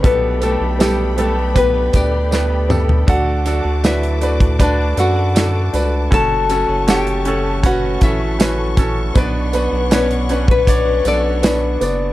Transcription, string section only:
0.04 A4 G5 B5
3.07 A5 D6
6.12 C#6
9.16 B4 F#5

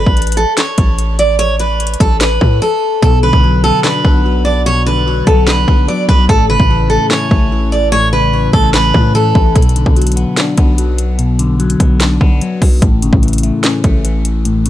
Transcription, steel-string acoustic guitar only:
Already playing: B4
0.37 A4
0.58 C#5
1.19 D5
1.39 C#5
1.60 B4
2.00 A4
2.20 B4
2.62 A4
3.02 A4
3.23 B4
3.64 A4
3.84 B4
4.45 D5
4.66 C#5
4.86 B4
5.27 A4
5.47 B4
5.88 D5
6.09 B4
6.29 A4
6.50 B4
6.90 A4
7.11 C#5
7.72 D5
7.92 C#5
8.13 B4
8.53 A4
8.74 B4
9.15 A4

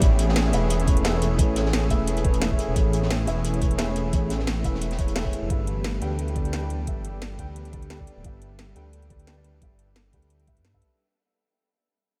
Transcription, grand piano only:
0.00 A3 E4 G#4 B4 C#5
0.53 A3 E4 G#4 B4 E5
0.86 A3 E4 G#4 B4 C#5
1.04 A3 E4 G#4 B4 E5
1.13 A3 E4 G#4 B4 C#5
1.37 A3 E4 G#4 B4 C#5
1.90 A3 E4 G#4 B4 E5
2.24 A3 E4 G#4 B4 C#5
2.41 A3 E4 G#4 B4 E5
2.50 A3 E4 G#4 B4 C#5
2.75 A3 E4 G#4 B4 C#5
3.26 A3 E4 G#4 B4 E5
3.61 A3 E4 G#4 B4 C#5
3.78 A3 E4 G#4 B4 E5
3.87 A3 E4 G#4 B4 C#5
4.12 A3 E4 G#4 B4 C#5
4.64 A3 E4 G#4 B4 E5
4.98 A3 E4 G#4 B4 C#5
5.15 A3 E4 G#4 B4 E5
5.24 A3 E4 G#4 B4 C#5
5.49 G3 D4 A4 B4 E5
6.01 G3 D4 A4 B4 G5
6.35 G3 D4 A4 B4 D5
6.52 G3 D4 A4 B4 G5
6.61 G3 D4 A4 B4 D5
6.86 G3 D4 A4 B4 E5
7.38 G3 D4 A4 B4 G5
7.73 G3 D4 A4 B4 D5
7.90 G3 D4 A4 B4 G5
7.99 G3 D4 A4 B4 D5
8.23 G3 D4 A4 B4 E5
8.75 G3 D4 A4 B4 G5
9.10 G3 D4 A4 B4 D5
9.27 G3 D4 A4 B4 G5
9.36 G3 D4 A4 B4 D5
9.61 G3 D4 A4 B4 E5
10.12 G3 D4 A4 B4 G5
10.47 G3 D4 A4 B4 E5
10.73 G3 D4 A4 B4 E5

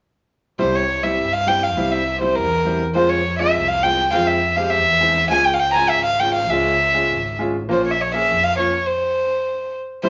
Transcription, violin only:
0.59 C5
0.75 C#5
1.03 E5
1.33 F5
1.48 G5
1.63 F5
1.92 E5
2.21 C5
2.35 A#4
2.95 C5
3.09 C#5
3.39 E5
3.68 F5
3.83 G5
4.11 F5 G5
4.27 E5
4.56 F5
4.70 E5
5.31 G#5
5.46 G5
5.54 F5
5.59 G5
5.72 G#5 A#5
5.89 E5
6.05 F5
6.20 G5
6.35 F5
6.50 E5
7.72 C5
7.86 C#5
7.91 E5
8.01 C#5
8.15 E5
8.44 F5
8.58 C#5
8.87 C5
10.03 C5

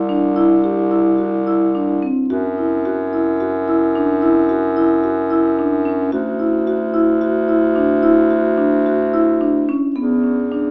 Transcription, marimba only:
0.09 D4
0.36 E4
0.64 G4
0.91 E4
1.18 F#4
1.47 E4
1.75 D4
2.02 C4
2.30 F#4
2.58 E4
2.85 F#4
3.13 E4
3.40 F#4
3.68 E4
3.95 D4
4.22 E4
4.49 F#4
4.76 E4
5.04 F#4
5.30 E4
5.59 D4
5.85 C#4
6.12 F#4
6.39 E4
6.67 F#4
6.94 E4
7.21 F#4
7.49 E4
7.76 D4
8.03 E4
8.30 F#4
8.58 D4
8.86 F#4
9.14 E4
9.41 D4
9.69 C#4
9.96 B3
10.24 C#4
10.51 D4

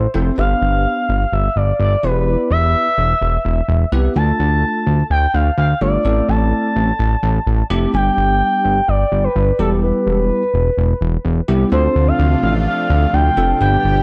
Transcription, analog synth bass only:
0.14 F1
0.38 G1
0.62 G1
1.09 G1
1.32 G1
1.56 G1
1.80 G1
2.03 E1
2.51 E1
2.98 E1
3.21 E1
3.45 E1
3.68 E1
3.92 C2
4.16 D2
4.40 D2
4.87 D2
5.10 D2
5.34 D2
5.58 D2
5.81 G1
6.05 A1
6.29 A1
6.76 A1
6.99 A1
7.23 A1
7.47 A1
7.70 F1
7.94 G1
8.17 G1
8.65 G1
8.88 G1
9.12 G1
9.36 G1
9.59 E1
10.06 E1
10.54 E1
10.78 E1
11.01 E1
11.25 E1
11.48 C2
11.72 D2
11.96 D2
12.19 D2
12.43 A1
12.90 D2
13.13 D2
13.37 F1
13.61 G1
13.84 G1

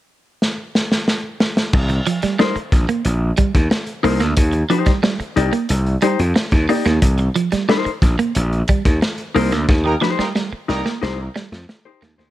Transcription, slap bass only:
1.74 C2
2.23 muted slap bass stroke
2.56 muted slap bass stroke
2.72 A#1
3.05 A#1
3.55 D#2
4.04 C2
4.20 D2
4.37 D#2
4.87 muted slap bass stroke
5.20 muted slap bass stroke
5.37 C2
5.70 C2
6.19 F2
6.52 D#2
6.86 D#2
7.02 C2
7.53 muted slap bass stroke
7.86 muted slap bass stroke
8.02 A#1
8.36 A#1
8.85 D#2
9.36 C2
9.52 D2
9.69 D#2
10.19 muted slap bass stroke
10.53 muted slap bass stroke
10.69 C2
11.03 C2
11.52 F2
12.02 D#2
12.19 D2

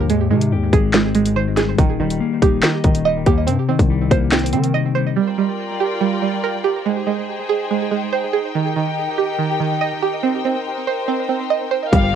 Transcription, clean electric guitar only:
0.10 G#2
0.31 D#3
0.52 G4
0.73 G#3
0.94 C4
1.15 G#2
1.36 D#3
1.57 G3
1.78 D#3
2.00 G3
2.20 A#3
2.42 D#4
2.63 D#5
2.84 D#3
3.05 G3
3.27 A#3
3.48 C3
3.69 D#3
3.90 G3
4.10 A#3
4.32 C4
4.53 C3
4.75 D#3
4.95 G3
11.92 G2

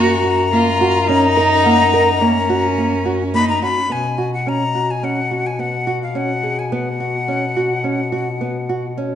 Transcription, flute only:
Already playing: A#5
3.34 B5
3.49 A#5
3.63 B5
3.92 G#5
4.34 F#5
4.49 A#5
4.91 G#5
5.04 F#5
5.46 G#5
5.60 F#5
6.03 F5
6.16 F#5
6.59 G#5
6.73 F#5

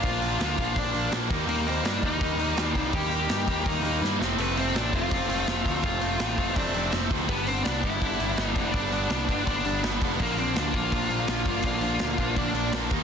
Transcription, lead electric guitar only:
0.04 F4 F5
0.79 D4 D5
1.49 A#3 A#4
1.68 C4 C5
1.85 D4 D5
2.05 D#4 D#5
2.64 D5
2.95 G4 G5
3.67 D#4 D#5
4.41 B3 B4
4.58 C4 C5
4.76 D4 D5
4.95 F4 F5
5.85 F4 F5
6.57 D4 D5
7.29 B3 B4
7.47 C4 C5
7.64 D4 D5
7.82 E4 E5
8.49 D5
8.72 D4 D5
9.48 D4 D5
10.21 A#3 A#4
10.39 C4 C5
10.58 D4 D5
10.75 F4 F5
11.64 F4 F5
12.36 D4 D5

